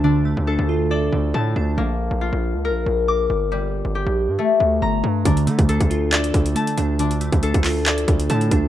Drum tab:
HH |----------------|----------------|----------------|xxxxxxx-xxxxxxx-|
CP |----------------|----------------|----------------|--------x-------|
BD |----------------|----------------|----------------|o--o-o----o-----|

HH |xxxxxxo-xxxxxxx-|
CP |------x-x-------|
BD |---o-o----o---o-|